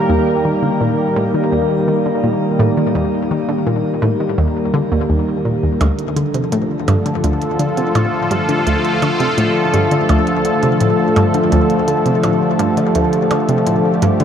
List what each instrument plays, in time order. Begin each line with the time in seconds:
Already playing: analog synth pad D#3 G3 A#3 G4 A#4
0.09 synth arpeggio sound D#2
0.45 synth arpeggio sound D#3
0.63 synth arpeggio sound D3
0.81 synth arpeggio sound A#2
1.16 synth arpeggio sound A2
1.34 synth arpeggio sound D#3
1.52 synth arpeggio sound D#2
1.88 synth arpeggio sound D#3
2.06 synth arpeggio sound D3
2.24 synth arpeggio sound A#2
2.59 synth arpeggio sound A2
2.77 synth arpeggio sound D#3
2.95 synth arpeggio sound D#2
3.31 synth arpeggio sound D#3
3.49 synth arpeggio sound D3
3.67 synth arpeggio sound A#2
4.02 synth arpeggio sound A2
4.20 synth arpeggio sound D#3
4.38 synth arpeggio sound D#2
4.74 synth arpeggio sound D3
4.92 synth arpeggio sound D#2
5.10 synth arpeggio sound D#2
5.45 synth arpeggio sound A#2
5.63 synth arpeggio sound D#2
5.81 synth arpeggio sound D2, analog synth pad D3, closed hi-hat, percussion blips
5.99 analog synth pad A4, closed hi-hat
6.16 synth arpeggio sound D3, closed hi-hat
6.25 analog synth pad F3
6.34 synth arpeggio sound C3, closed hi-hat
6.43 analog synth pad A3 F4
6.52 synth arpeggio sound A2, closed hi-hat
6.88 synth arpeggio sound G2, closed hi-hat, percussion blips
7.06 synth arpeggio sound D3, closed hi-hat
7.24 synth arpeggio sound D2, closed hi-hat
7.42 closed hi-hat
7.59 synth arpeggio sound D3, closed hi-hat
7.77 synth arpeggio sound C3, closed hi-hat
7.95 synth arpeggio sound A2, closed hi-hat, percussion blips
8.31 synth arpeggio sound G2, closed hi-hat
8.49 synth arpeggio sound D3, closed hi-hat
8.67 synth arpeggio sound D2, closed hi-hat
8.85 closed hi-hat
9.02 synth arpeggio sound D3, closed hi-hat, percussion blips
9.20 synth arpeggio sound C3, closed hi-hat
9.38 synth arpeggio sound A2, closed hi-hat
9.74 synth arpeggio sound G2, closed hi-hat
9.91 synth arpeggio sound D3, closed hi-hat
10.09 synth arpeggio sound D2, closed hi-hat, percussion blips
10.27 closed hi-hat
10.45 synth arpeggio sound D3, closed hi-hat
10.63 synth arpeggio sound C3, closed hi-hat
10.81 synth arpeggio sound A2, closed hi-hat
11.16 synth arpeggio sound G2, closed hi-hat, percussion blips
11.34 synth arpeggio sound D3, closed hi-hat
11.52 synth arpeggio sound D2, closed hi-hat
11.70 closed hi-hat
11.88 synth arpeggio sound D3, closed hi-hat
12.06 synth arpeggio sound C3, analog synth pad G4, closed hi-hat
12.24 synth arpeggio sound A2, closed hi-hat, percussion blips
12.59 synth arpeggio sound G2, closed hi-hat
12.77 synth arpeggio sound D3, closed hi-hat
12.95 synth arpeggio sound D2, closed hi-hat
13.13 closed hi-hat
13.31 synth arpeggio sound D3, closed hi-hat, percussion blips
13.49 synth arpeggio sound C3, closed hi-hat
13.67 synth arpeggio sound A2, closed hi-hat
14.02 synth arpeggio sound G2, closed hi-hat
14.20 synth arpeggio sound D3, closed hi-hat